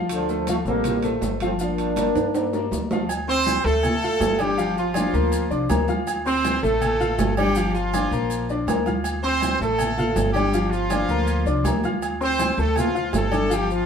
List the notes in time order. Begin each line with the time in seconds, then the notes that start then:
Already playing: D2 F3 F4 F5
0.09 D3 F3, high conga, high timbale, maracas
0.29 A3 A4 C5, high conga, maracas
0.47 F3 A3 F4 F5, high conga, high timbale, low timbale, maracas
0.65 A1 G3 A#3 C4 A4 C5, high conga, maracas
0.84 high conga, low conga, high timbale, maracas
1.03 A3 A4 C5, high conga, low conga, high timbale, maracas
1.21 G1, high conga, low timbale, maracas
1.40 F3 A3 C4 F4 F5, high conga, high timbale, maracas
1.59 F3 A#3 D4 F4 F5, high conga, maracas
1.78 high conga, high timbale, maracas
1.96 A#3 A#4 D5, high conga, high timbale, low timbale, maracas
2.15 G2, high conga, high timbale, maracas
2.35 A#3 A#4 D5, high conga, high timbale, maracas
2.53 A#3 A#4 D5, high conga, low timbale, maracas
2.71 D2, high conga, low timbale, maracas
2.91 F3 F4 F5, high conga, low timbale, maracas
3.09 high conga, low agogo, maracas
3.28 C4 C5 C6, high conga, maracas
3.47 high conga, low timbale, low agogo, maracas
3.64 D2 A3 A4 A5, high conga, maracas
3.83 high conga, low conga, low agogo, maracas
4.03 F4 F5 F6, high conga, maracas
4.20 G1, high conga, low timbale, low agogo, maracas
4.39 G3 D4 G4 D5 D6, high conga, low agogo, maracas
4.58 F3 F4 F5, high conga, low agogo, maracas
4.77 F3 F4, high conga, maracas
4.94 D4 D5 D6, high conga, low timbale, low agogo, maracas
5.13 D2 A#3 A#4 A#5, high conga, maracas
5.32 high conga, low agogo, maracas
5.50 C2 D4 D5 D6, high conga, maracas
5.69 D2 A#3 A#4 A#5, high conga, low timbale, low agogo, maracas
5.88 F4 F5 F6, high conga, low agogo, maracas
6.07 high conga, low agogo, maracas
6.26 C4 C5 C6, high conga, maracas
6.44 high conga, low timbale, low agogo, maracas
6.63 A1 A3 A4 A5, high conga, maracas
6.82 high conga, low conga, low agogo, maracas
7.00 F4 F5 F6, high conga, low conga, maracas
7.18 G1, high conga, low timbale, low agogo, maracas
7.36 G3 D4 G4 D5 D6, high conga, low agogo, maracas
7.55 F3 F4 F5, high conga, low agogo, maracas
7.73 F3 F4, high conga, maracas
7.94 D4 D5 D6, high conga, low timbale, low agogo, maracas
8.11 A#1 A#3 A#4 A#5, high conga, maracas
8.30 high conga, low agogo, maracas
8.49 D4 D5 D6, high conga, maracas
8.67 D2 A#3 A#4 A#5, high conga, low timbale, low agogo, maracas
8.86 F4 F5 F6, high conga, low agogo, maracas
9.04 high conga, low agogo, maracas
9.23 C4 C5 C6, high conga, maracas
9.41 high conga, low timbale, low agogo, maracas
9.60 A1 A3 A4 A5, high conga, maracas
9.79 high conga, low conga, low agogo, maracas
9.98 F4 F5 F6, high conga, low conga, maracas
10.16 G1, high conga, low timbale, low agogo, maracas
10.33 G3 D4 G4 D5 D6, high conga, low agogo, maracas
10.53 F3 F4 F5, high conga, low agogo, maracas
10.70 F3 F4, high conga, maracas
10.90 D4 D5 D6, high conga, low timbale, low agogo, maracas
11.09 D2 A#3 A#4 A#5, high conga, maracas
11.27 high conga, low agogo, maracas
11.46 C2 D4 D5 D6, high conga, maracas
11.64 D2 A#3 A#4 A#5, high conga, low timbale, low agogo, maracas
11.84 F4 F5 F6, high conga, low agogo, maracas
12.02 high conga, low agogo, maracas
12.21 C4 C5 C6, high conga, maracas
12.39 high conga, low timbale, low agogo, maracas
12.58 D2 A3 A4 A5, high conga, maracas
12.76 F3 F4, high conga, low conga, low agogo, maracas
12.94 F4 F5 F6, high conga, maracas
13.13 G1 A3 A4, high conga, low timbale, low agogo, maracas
13.31 D4 D5 D6, high conga, low agogo, maracas
13.49 F3 G3 F4 F5, high conga, low agogo, maracas
13.54 G4
13.70 F3 F4, high conga, maracas